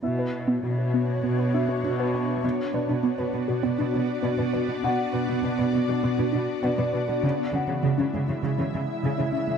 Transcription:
X:1
M:4/4
L:1/16
Q:1/4=100
K:Bdor
V:1 name="Grand piano"
[Ee]8- [Ee]2 e6 | z2 [Dd]12 z2 | [Ff]12 [Dd]4- | [Dd]2 f12 z2 |]
V:2 name="Ambient pad"
[B,DFc]16 | [B,DFd]16- | [B,DFd]16 | [G,Ee]16 |]
V:3 name="Synth pluck"
B, B z B, F F B, z B, B D B, D B B, z | B, z B D B, B F F B, D D z B, B B F | B, z B D B, B F F B, D D z B, B B F | C, z C E, C, C G, G, C, E, E, z C, C C G, |]
V:4 name="Cello section" clef=bass
B,,4 B,,4 B,,4 B,,4 | B,, z B,, B,, B,, B,, B,, B,, B,, B,, B,, z B,, B,, B,, B,, | B,, z B,, B,, B,, B,, B,, B,, B,, B,, B,, z B,, B,, B,, B,, | C, z C, C, C, C, C, C, C, C, C, z C, C, C, C, |]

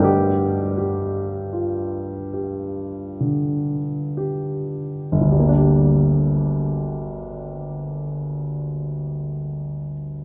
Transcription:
X:1
M:6/8
L:1/8
Q:3/8=23
K:Gm
V:1 name="Grand piano"
G,, G F G D, G | z6 |]
V:2 name="Grand piano"
G4- G z | [G,,,D,,G,B,DG]6 |]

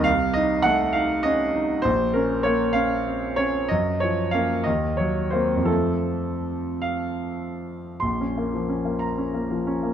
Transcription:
X:1
M:6/8
L:1/16
Q:3/8=62
K:Bbm
V:1 name="Grand piano"
f2 e2 g2 f2 e4 | c2 B2 d2 f4 d2 | e2 d2 f2 e2 d2 c2 | =A6 f6 |
c'6 b6 |]
V:2 name="Grand piano"
C,,2 E2 =A,2 E2 D2 E2 | B,,,2 D2 B,2 D2 C2 D2 | G,,2 F,2 [B,D]2 E,,2 G,2 [B,C]2 | [F,,F,=A,C]12 |
B,,, D B, F, D B,2 D B, F, D B, |]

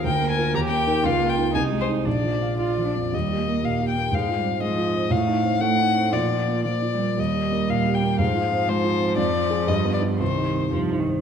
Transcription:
X:1
M:2/4
L:1/16
Q:1/4=118
K:Eb
V:1 name="Violin"
g2 a2 b g3 | f2 g2 a2 c2 | d4 d4 | e4 f2 g2 |
f4 e4 | f4 ^f4 | d4 d4 | e4 f2 g2 |
f4 c4 | [K:Cm] d4 e2 d2 | c4 z4 |]
V:2 name="Grand piano"
(3D,,2 B,2 [FB]2 (3E,,2 B,2 [EB]2 | (3_D,,2 B,2 [EB]2 (3C,,2 A,2 [Ec]2 | (3B,,,2 F,2 f2 (3F2 F,2 F,,2 | (3E,,2 G2 B,2 (3B,,2 G2 B,2 |
(3A,,2 F2 C2 (3A,2 F2 C2 | (3=A,,2 E2 C2 (3=A,2 E2 C2 | (3B,,2 F2 B,2 (3F,2 F2 B,2 | (3E,,2 G2 B,2 (3B,,2 G2 B,2 |
(3A,,2 F2 C2 (3A,2 F2 C2 | [K:Cm] (3F,,2 C2 [FA]2 (3G,,2 =B,2 [FG]2 | (3C,,2 E2 C2 (3G,,2 E2 C2 |]
V:3 name="Cello"
B4 G4 | F4 E4 | D4 F2 D2 | G,2 B,2 B,4 |
A,2 G,2 F,4 | =A,4 A,4 | F,4 B,2 G,2 | G,8 |
F,8- | [K:Cm] F,8 | E,4 F,2 E,2 |]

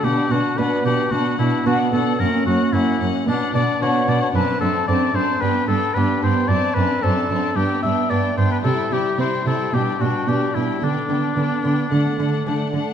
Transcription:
X:1
M:4/4
L:1/16
Q:1/4=111
K:Bm
V:1 name="Violin section"
f2 f2 f2 f2 f2 f2 f2 f2 | f2 f2 f2 f2 f2 f2 f2 f2 | [K:G] a2 a2 a2 a2 g2 g2 g2 g2 | a2 a2 a2 a2 g2 g2 g2 g2 |
g2 g2 g2 g2 g2 g2 g2 g2 | g2 g2 g2 g2 f2 f2 f2 f2 |]
V:2 name="Oboe"
G2 F2 B2 G2 F2 E2 F2 A2 | ^A2 F2 E3 z D2 d2 c2 d c | [K:G] B2 A2 d2 c2 B2 A2 B2 c2 | d2 B2 A4 G2 e2 d2 c B |
A2 G2 c2 A2 G2 F2 G2 E2 | D12- D2 z2 |]
V:3 name="Violin section"
D2 D2 D2 D2 D2 D2 D2 D2 | C2 C2 C2 C2 D2 D2 D2 D2 | [K:G] D2 D2 D2 D2 D2 D2 D2 D2 | D2 D2 D2 D2 D2 D2 D2 D2 |
E2 E2 E2 E2 D2 D2 D2 D2 | D2 D2 D2 D2 D2 D2 D2 D2 |]
V:4 name="Viola section"
B,2 B,2 B,2 B,2 B,2 B,2 B,2 B,2 | ^A,2 A,2 A,2 A,2 B,2 B,2 B,2 B,2 | [K:G] C2 C2 C2 C2 B,2 B,2 B,2 B,2 | C2 C2 C2 C2 B,2 B,2 B,2 B,2 |
G,2 G,2 G,2 G,2 G,2 G,2 G,2 G,2 | B,2 B,2 B,2 B,2 A,2 A,2 A,2 A,2 |]
V:5 name="Lute"
z4 [B,DF]4 z4 [B,DF]4 | z4 [^A,CF]4 z4 [B,DF]4 | [K:G] z4 [CDA]4 z4 [B,DG]4 | z4 [CD]4 z4 [B,D]4 |
z4 [CE]4 z4 D4 | z4 [B,D]4 z4 [A,D]4 |]
V:6 name="Lute" clef=bass
B,,2 B,,2 B,,2 B,,2 B,,2 B,,2 B,,2 B,,2 | F,,2 F,,2 F,,2 F,,2 B,,2 B,,2 B,,2 B,,2 | [K:G] F,,2 F,,2 F,,2 F,,2 G,,2 G,,2 G,,2 G,,2 | F,,2 F,,2 F,,2 F,,2 G,,2 G,,2 G,,2 G,,2 |
C,2 C,2 C,2 C,2 B,,2 B,,2 B,,2 B,,2 | D,2 D,2 D,2 D,2 D,2 D,2 D,2 D,2 |]
V:7 name="Cello section" clef=bass
B,,2 B,,2 B,,2 B,,2 B,,2 B,,2 B,,2 B,,2 | F,,2 F,,2 F,,2 F,,2 B,,2 B,,2 B,,2 B,,2 | [K:G] F,,2 F,,2 F,,2 F,,2 G,,2 G,,2 G,,2 G,,2 | F,,2 F,,2 F,,2 F,,2 G,,2 G,,2 G,,2 G,,2 |
C,2 C,2 C,2 C,2 B,,2 B,,2 B,,2 B,,2 | D,2 D,2 D,2 D,2 D,2 D,2 D,2 D,2 |]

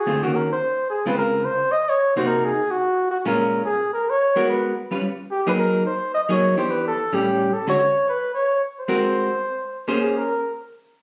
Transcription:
X:1
M:4/4
L:1/8
Q:"Swing" 1/4=218
K:Db
V:1 name="Muted trumpet"
A G B c3 A _c | B2 c2 e d2 c | B A2 G3 G B- | B2 A2 B d3 |
_c2 z4 =G c | B2 c2 e d2 c | =B =A2 =G3 A ^c- | ^c2 _c2 d2 z =c- |
c6- c z | [K:Bbm] A B3 z4 |]
V:2 name="Hollow-body jazz guitar"
[=D,=A,CF] [E,B,_DG]2 z4 [_D,_A,CF]- | [D,A,CF]2 z4 z [C,B,EG]- | [C,B,EG]2 z4 z [B,,A,DF]- | [B,,A,DF]2 z4 z [A,_CGB]- |
[A,_CGB]2 z [=G,DF_c] z3 [_G,B,EA]- | [G,B,EA]2 z3 [G,B,EA]2 [_F,_C=D=G]- | [_F,_C=D=G]2 z [=A,,=G,_D]3 z [=D,_A,^C^F] | z8 |
[A,CGB]3 z4 [B,DAc]- | [K:Bbm] [B,DAc]2 z6 |]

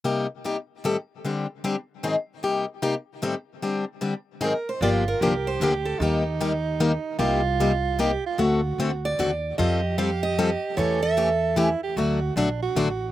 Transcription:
X:1
M:3/4
L:1/8
Q:"Swing" 1/4=151
K:Gm
V:1 name="Steel-string acoustic guitar"
z6 | z6 | z6 | z4 B c |
d B2 c B A | G3 z3 | z6 | z3 d3 |
e2 f e3 | ^c =e4 z | z6 |]
V:2 name="Soprano saxophone"
z6 | z6 | z6 | z6 |
F2 G4 | E6 | F4 G F | ^F4 z2 |
G6 | A4 =E G | ^F2 D F3 |]
V:3 name="Steel-string acoustic guitar"
[C,G,B,EG] z [C,G,B,EG] z [A,,E,G,CGA] z | [D,G,CDG] z [D,G,CDG] z [_A,,E,_G,CE_A] z | [C,G,B,EG] z [C,G,B,EG] z [A,,E,G,CGA] z | [D,G,CDG] z [D,G,CDG] z [_A,,E,_G,CE_A] z |
[D,F,B,DG] z [D,F,B,DG] z [D,F,B,DG] z | [E,G,B,EG] z [E,G,B,EG] z [E,G,B,EG] z | [C,G,B,EG] z [C,G,B,EG] z [C,G,B,EG] z | [D,A,C^FA] z [D,A,CFA] z [D,A,CFA] z |
[F,G,CFA] z [F,G,CFA] z [F,G,CFA] z | [=E,A,^CG] z [E,A,CG] z [E,A,CG] z | [D,^F,A,D^F] z [D,F,A,DF] z [D,F,A,DF] z |]
V:4 name="Upright bass" clef=bass
z6 | z6 | z6 | z6 |
G,,,2 C,,2 D,,2 | E,,6 | C,,6 | D,,2 D,,2 E,,2 |
F,,6 | =E,,6 | D,,2 B,,,2 A,,,2 |]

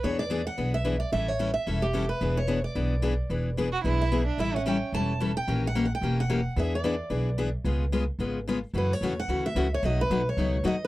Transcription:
X:1
M:4/4
L:1/16
Q:"Swing" 1/4=220
K:Emix
V:1 name="Steel-string acoustic guitar"
c2 d4 f4 e4 d2 | e2 c4 e4 =G4 B2- | B2 c4 d8- d2- | d6 z4 e6 |
e2 f2 =g4 a6 g2- | =g2 f3 f g4 f6 | e2 d12 z2 | z16 |
B2 c4 f4 e4 c2 | ^d2 B4 c6 d3 z |]
V:2 name="Violin"
z16 | z16 | z16 | z6 F2 E6 D2 |
E2 C8 z6 | z16 | z16 | z16 |
z16 | z16 |]
V:3 name="Steel-string acoustic guitar"
[E,B,DG]2 z2 [E,B,DG]2 z2 [E,B,DG]2 z2 [E,B,DG]2 z2 | [E,=G,CEA]2 z2 [E,G,CEA]2 z2 [E,G,CEA]2 z2 [E,G,CEA]2 z2 | [E,B,DG]2 z2 [E,B,DG]2 z2 [E,B,DG]2 z2 [E,B,DG]2 z2 | [E,B,DG]2 z2 [E,B,DG]2 z2 [E,B,DG]2 z2 [E,B,DG]2 z2 |
[E,=G,CEA]2 z2 [E,G,CEA]2 z2 [E,G,CEA]2 z2 [E,G,CEA]2 z2 | [E,^A,C=G^A]2 z2 [E,A,CGA]2 z2 [E,A,CGA]2 z2 [E,A,CGA]2 z2 | [E,B,DG]2 z2 [E,B,DG]2 z2 [E,B,DG]2 z2 [E,B,DG]2 z2 | [C,G,B,^EG]2 z2 [C,G,B,EG]2 z2 [C,G,B,EG]2 z2 [C,G,B,EG]2 z2 |
[C,E,A,CF]2 z2 [C,E,A,CF]2 z2 [C,E,A,CF]2 z2 [C,E,A,CF]2 z2 | [B,,F,A,^DF]2 z2 [B,,F,A,DF]2 z2 [B,,F,A,DF]2 z2 [B,,F,A,DF]2 z2 |]
V:4 name="Upright bass" clef=bass
E,,8 B,,,8 | A,,,8 E,,,8 | E,,,8 B,,,8 | E,,,8 B,,,8 |
A,,,8 E,,,8 | ^A,,,8 E,,,8 | E,,8 B,,,8 | C,,8 G,,,8 |
F,,4 E,,4 D,,4 C,,4 | B,,,4 B,,,4 C,,4 ^D,,4 |]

